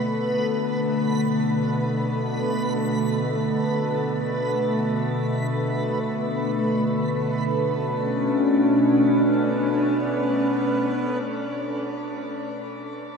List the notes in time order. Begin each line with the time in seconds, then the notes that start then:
Already playing: B2 D3 A3 B3 B4 B5
7.03 B2 B3
7.19 A3
7.35 C#4
7.52 D4